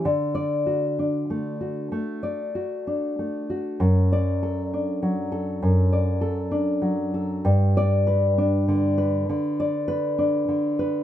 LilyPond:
\new Staff \with { instrumentName = "Nylon-string guitar" } { \time 4/4 \key d \major \tempo 4 = 65 << { \tuplet 3/2 { r8 d''4 } r2. | \tuplet 3/2 { r8 d''4 } r2. | \tuplet 3/2 { r8 d''4 } r2. | } \\ { \tuplet 3/2 { d4 fis'8 d'8 a8 fis'8 a8 d''8 fis'8 d'8 a8 fis'8 } | \tuplet 3/2 { fis,4 a'8 d'8 fis8 a'8 fis,8 d''8 a'8 d'8 fis8 a'8 } | \tuplet 3/2 { g,4 b'8 d'8 d8 b'8 d8 d''8 b'8 d'8 d8 b'8 } | } >> }